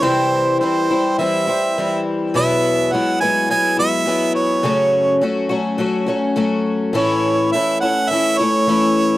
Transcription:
<<
  \new Staff \with { instrumentName = "Harmonica" } { \time 4/4 \key a \major \tempo 4 = 104 c''4 c''4 e''4. r8 | e''4 fis''8 gis''8 gis''8 e''4 cis''8~ | cis''4 r2. | cis''4 e''8 fis''8 e''8 cis''4. | }
  \new Staff \with { instrumentName = "Twelve-string acoustic guitar" } { \time 4/4 \key a \major <c e g c' e'>4 <e g c' e'>8 <g c' e'>8 <e g c' e'>8 <g c' e'>8 <e g c' e'>4 | <e, b, fis gis b e'>4 <fis gis b e'>8 <fis gis b e'>8 <fis gis b e'>8 <fis gis b e'>8 <fis gis b e'>4 | <fis, cis fis a cis' fis'>4 <fis a cis' fis'>8 <fis a cis' fis'>8 <fis a cis' fis'>8 <fis a cis' fis'>8 <fis a cis' fis'>4 | <a, e a cis' e'>4 <e a cis' e'>8 <a cis' e'>8 <e a cis' e'>8 <a cis' e'>8 <e a cis' e'>4 | }
>>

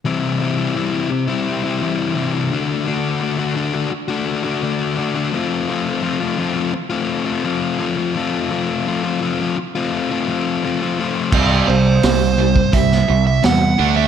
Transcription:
<<
  \new Staff \with { instrumentName = "Lead electric guitar" } { \time 4/4 \key c \lydian \tempo 4 = 85 r1 | r1 | r1 | r1 |
r8 c''4. e''8. e''16 fis''8. e''16 | }
  \new Staff \with { instrumentName = "Distorted electric guitar" } { \time 4/4 \key c \lydian <c e g c' e'>8 <e g c' e'>16 <g c' e'>16 <c e g c' e'>16 <g c' e'>8 <g c' e'>8 <g c' e'>16 <e g c' e'>8 <c e g c' e'>16 <g c' e'>16 <d a d' fis'>8 | <d a d' fis'>8 <d a d' fis'>16 <a d' fis'>16 <d a d' fis'>16 <a d' fis'>8 <a d' fis'>8 <a d' fis'>16 <d a d' fis'>8 <d a d' fis'>16 <a d' fis'>16 <f a c' f'>8 | <f a c' f'>8 <f a c' f'>16 <a c' f'>16 <f a c' f'>16 <a c' f'>8 <a c' f'>8 <a c' f'>16 <f a c' f'>8 <f a c' f'>16 <a c' f'>16 <f a c' f'>8 | <f a c' f'>8 <f a c' f'>16 <a c' f'>16 <f a c' f'>16 <a c' f'>8 <a c' f'>8 <a c' f'>16 <f a c' f'>8 <f a c' f'>16 <a c' f'>16 <f a c' f'>8 |
<c g c'>8 <c g>8 <c g>8 <c g>8 <c g>8 <c g>8 <c g>8 <d a d'>8 | }
  \new Staff \with { instrumentName = "Overdriven electric guitar" } { \clef bass \time 4/4 \key c \lydian r1 | r1 | r1 | r1 |
<c g c'>8 <c g>8 <c g>8 <c g>8 <c g>8 <c g>8 <c g>8 <d a d'>8 | }
  \new Staff \with { instrumentName = "Picked electric bass" } { \clef bass \time 4/4 \key c \lydian r1 | r1 | r1 | r1 |
c,8 c,8 c,4 c,8 c,8 e,8 d,8 | }
  \new DrumStaff \with { instrumentName = "Drums" } \drummode { \time 4/4 r4 r4 r4 r4 | r4 r4 r4 r4 | r4 r4 r4 r4 | r4 r4 r4 r4 |
<cymc bd>4 <hho sn>8. bd16 <hho bd>16 sn8. <hho sn>4 | }
>>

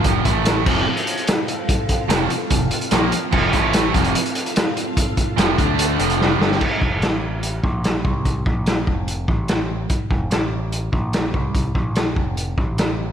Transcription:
<<
  \new Staff \with { instrumentName = "String machine" } { \time 4/4 \key f \major \tempo 4 = 146 r8 <e' a' e''>8~ \tuplet 3/2 { <e' a' e''>8. <des' ges' bes' ges''>8 <c' f' a' f''>16~ } <c' f' a' f''>2~ | <c' f' a' f''>1~ | <c' f' a' f''>8 <e' a' e''>4 <c' f' a' f''>2~ <c' f' a' f''>8~ | <c' f' a' f''>4. <d' a' d''>4 <c' f' a' f''>4. |
r1 | r1 | r1 | r1 | }
  \new Staff \with { instrumentName = "Overdriven electric guitar" } { \clef bass \time 4/4 \key f \major <f, c f>8 <a, e a>4 <f, c f>8 r2 | r4 <f, c f>8 r8 <f, c>8 r8 <bes, f bes>8 r8 | <f, c f>8 <a, e a>4 <f, c f>8 r2 | r4 <f, c f>8 <d a d'>4 <f, c f>4 <g, d g>8 |
r1 | r1 | r1 | r1 | }
  \new Staff \with { instrumentName = "Overdriven electric guitar" } { \clef bass \time 4/4 \key f \major <f, c f>8 <a, e a>4 <f, c f>8 r2 | r4 <f, c f>8 r8 <f, c>8 r8 <bes, f bes>8 r8 | <f, c f>8 <a, e a>4 <f, c f>8 r2 | r4 <f, c f>8 <d a d'>4 <f, c f>4 <g, d g>8 |
r1 | r1 | r1 | r1 | }
  \new Staff \with { instrumentName = "Picked electric bass" } { \clef bass \time 4/4 \key f \major f,,8 a,,4 f,,8 r2 | r4 f,,8 r8 f,,8 r8 bes,,8 r8 | f,,8 a,,4 f,,8 r2 | r4 f,,8 d,4 f,,4 g,,8 |
r8 f,,8 a,,4. bes,,4 c,8~ | c,8 bes,,4 f,,4 a,,4. | r8 f,,8 a,,4. bes,,4 c,8~ | c,8 bes,,4 f,,4 a,,4. | }
  \new DrumStaff \with { instrumentName = "Drums" } \drummode { \time 4/4 <hh bd>8 <hh bd>8 <hh sn>8 <cymc bd>16 sn16 r16 hh16 hh16 hh16 <hh sn>8 hh8 | <hh bd>8 <hh bd>8 <hh sn>8 hh8 <hh bd>8 hh16 hh16 <hh sn>8 hh8 | <cymc bd>8 <hh bd>8 <hh sn>8 <hh bd>16 hh16 hh16 hh16 hh16 hh16 <hh sn>16 sn16 hh8 | <hh bd>8 <hh bd>8 <hh sn>8 <hh bd>8 hh8 hh16 hh16 sn8 sn16 sn16 |
<cymc bd>8 bd8 <hh sn>4 hh8 bd8 <hh sn>8 bd8 | <hh bd>8 bd8 <hh sn>8 bd8 hh8 bd8 <hh sn>4 | <hh bd>8 bd8 <hh sn>4 hh8 bd8 <hh sn>8 bd8 | <hh bd>8 bd8 <hh sn>8 bd8 hh8 bd8 <hh sn>4 | }
>>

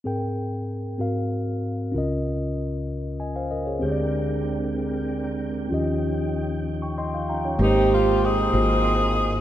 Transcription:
<<
  \new Staff \with { instrumentName = "Tine electric piano" } { \time 6/8 \key aes \major \tempo 4. = 64 << { r2. | r2 <ees'' aes''>16 <c'' f''>16 <bes' ees''>16 <aes' des''>16~ | <aes' des''>16 r2 r8. | r4. r16 <g'' des'''>16 <ees'' g'' c'''>16 f''16 <f'' g'' bes''>16 <des'' g''>16~ |
<des'' g''>16 r2 r8. | } \\ { <c' aes' bes' g''>4. <c' ges' bes' f''>4. | <des' f' bes' ees''>2. | <c' g' aes' des'' d''>2. | <des' f' g' ees''>2. |
<aes bes g' ces'' c''>4 r8 <bes f' ges' c''>4 r8 | } >> }
  \new Staff \with { instrumentName = "Tine electric piano" } { \clef bass \time 6/8 \key aes \major aes,4. aes,4. | <des, des>2. | <d, d>2. | <ees, ees>2. |
aes,4. aes,4. | }
  \new Staff \with { instrumentName = "Tonewheel organ" } { \time 6/8 \key aes \major << { r2. | r2. | <d aes c' bes'>2. | f2. |
<bes' c'''>2. | } \\ { r2. | r2. | <d' g''>2. | <des' ees'>2. |
<ees'' g''>4. <ees'' f''>4. | } >> }
  \new Staff \with { instrumentName = "Saxophone section" } { \time 6/8 \key aes \major << { r2. | r2. | r2. | r2. |
ees'8 f'8 aes'2 | } \\ { r2. | r2. | r2. | r2. |
<c' g'>4 <c' ees'>2 | } >> }
  \new Staff \with { instrumentName = "Fretless electric bass" } { \clef bass \time 6/8 \key aes \major r2. | r2. | r2. | r2. |
aes,,4. aes,,4. | }
>>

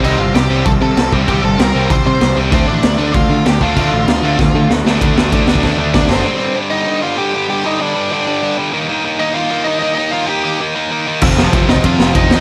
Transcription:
<<
  \new Staff \with { instrumentName = "Lead electric guitar" } { \time 4/4 \key g \minor \tempo 4 = 193 <ees' ees''>8 <f' f''>8 <g' g''>4 <a' a''>8 <a' a''>4 r8 | <g' g''>8 <a' a''>8 <bes' bes''>4 <c'' c'''>8 <c'' c'''>4 r8 | <c' c''>8 <d' d''>4. <f' f''>4 <g' g''>8 <f' f''>8~ | <f' f''>2. r4 |
r2. <d' d''>8 <c' c''>8~ | <c' c''>4 r8 <ees' ees''>4 <f' f''>8 <g' g''>4 | <g' g''>8 <ees' ees''>8 <d' d''>4 <d' d''>4. r8 | r4. <ees' ees''>8 <f' f''>4 <ees' ees''>8 <ees' ees''>8 |
<ees' ees''>8 <f' f''>8 <g' g''>4 r2 | r4. <ees' ees''>8 <f' f''>4 <ees' ees''>4 | }
  \new Staff \with { instrumentName = "Distorted electric guitar" } { \clef bass \time 4/4 \key g \minor <c g c'>8 <c g>8 <c g>8 <c g c'>8 <c g>8 <c g>8 <c g>8 <c g c'>8 | <c g c'>8 <c g>8 <c g>8 <c g c'>8 <c g>8 <c g>8 <c g>8 <c g c'>8 | <d a d'>8 <d a>8 <d a>8 <d a d'>8 <d a>8 <d a>8 <d a>8 <d a d'>8 | <d a d'>8 <d a>8 <d a>8 <d a d'>8 <d a>8 <d a>8 <d a>8 <d a d'>8 |
<d a d'>8 <d a d'>8 <d a d'>8 <d a d'>8 <d a d'>8 <d a d'>8 <d a d'>8 <d a d'>8 | <g, d g>8 <g, d g>8 <g, d g>8 <g, d g>8 <g, d g>8 <g, d g>8 <g, d g>8 <g, d g>8 | <g, d g>8 <g, d g>8 <g, d g>8 <g, d g>8 <g, d g>8 <g, d g>8 <g, d g>8 <g, d g>8 | <ees bes ees'>8 <ees bes ees'>8 <ees bes ees'>8 <ees bes ees'>8 <ees bes ees'>8 <ees bes ees'>8 <ees bes ees'>8 <ees bes ees'>8 |
<ees bes ees'>8 <ees bes ees'>8 <ees bes ees'>8 <ees bes ees'>8 <ees bes ees'>8 <ees bes ees'>8 <ees bes ees'>8 <ees bes ees'>8 | <f, c f>8 <f, c f>8 <f, c f>8 <f, c f>8 <f, c f>8 <f, c f>8 <f, c f>8 <f, c f>8 | }
  \new Staff \with { instrumentName = "Distorted electric guitar" } { \clef bass \time 4/4 \key g \minor <c g c'>8 <c g>8 <c g>8 <c g c'>8 <c g>8 <c g>8 <c g>8 <c g c'>8 | <c g c'>8 <c g>8 <c g>8 <c g c'>8 <c g>8 <c g>8 <c g>8 <c g c'>8 | <d a d'>8 <d a>8 <d a>8 <d a d'>8 <d a>8 <d a>8 <d a>8 <d a d'>8 | <d a d'>8 <d a>8 <d a>8 <d a d'>8 <d a>8 <d a>8 <d a>8 <d a d'>8 |
<d a d'>8 <d a d'>8 <d a d'>8 <d a d'>8 <d a d'>8 <d a d'>8 <d a d'>8 <d a d'>8 | r1 | r1 | r1 |
r1 | <f, c f>8 <f, c f>8 <f, c f>8 <f, c f>8 <f, c f>8 <f, c f>8 <f, c f>8 <f, c f>8 | }
  \new Staff \with { instrumentName = "Overdriven electric guitar" } { \clef bass \time 4/4 \key g \minor <c g c'>4 <c g c'>2~ <c g c'>8 <c g c'>8~ | <c g c'>4 <c g c'>2~ <c g c'>8 r8 | <d a d'>4. <d a d'>2~ <d a d'>8 | <d a d'>4. <d a d'>2~ <d a d'>8 |
<d a d'>8 <d a d'>8 <d a d'>8 <d a d'>8 <d a d'>8 <d a d'>8 <d a d'>8 <d a d'>8 | r1 | r1 | r1 |
r1 | <f, c f>8 <f, c f>8 <f, c f>8 <f, c f>8 <f, c f>8 <f, c f>8 <f, c f>8 <f, c f>8 | }
  \new Staff \with { instrumentName = "Picked electric bass" } { \clef bass \time 4/4 \key g \minor c,8 g,,8 c,8 c,8 c,8 c8 c,8 c,8 | c,8 g,,8 c,8 c,8 c,8 c8 c,8 c,8 | d,8 a,,8 d,8 d,8 d,8 d8 d,8 d,8 | d,8 a,,8 d,8 d,8 d,8 d8 d,8 d,8 |
d,8 d,8 d,8 d,8 d,8 d,8 d,8 fis,,8 | r1 | r1 | r1 |
r1 | f,,8 f,,8 f,,8 f,,8 f,8 f,,8 f,,8 ees,8 | }
  \new DrumStaff \with { instrumentName = "Drums" } \drummode { \time 4/4 cymc4 <cymc sn>4 <cymc bd>4 <cymc sn>8 bd8 | <cymc bd>4 <cymc sn>4 <cymc bd>4 <cymc sn>4 | <cymc bd>4 <cymc sn>4 <cymc bd>4 <cymc sn>8 bd8 | <cymc bd>4 <cymc sn>4 <bd sn>4 sn8 sn8 |
<bd cymr>8 sn8 <bd cymr>8 sn16 bd16 <bd sn>4 <bd sn>8 sn8 | r4 r4 r4 r4 | r4 r4 r4 r4 | r4 r4 r4 r4 |
r4 r4 r4 r4 | <cymc bd>8 sn8 <bd cymr>8 sn16 bd16 <bd cymr>8 sn8 <bd cymr>8 sn8 | }
>>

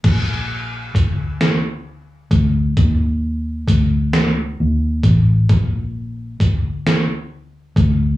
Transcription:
<<
  \new Staff \with { instrumentName = "Fingered electric bass" } { \clef bass \time 6/8 \key bes \mixolydian \tempo 4. = 44 bes,,4 d,4. d,8 | ees,4 d,4 ees,8 a,,8 | bes,,4 d,4. d,8 | }
  \new DrumStaff \with { instrumentName = "Drums" } \drummode { \time 6/8 <cymc hh bd>4 <hh bd>8 <hh sn>4 <hh bd>8 | <hh bd>4 <hh bd>8 <hh sn>4 <hh bd>8 | <hh bd>4 <hh bd>8 <hh sn>4 <hh bd>8 | }
>>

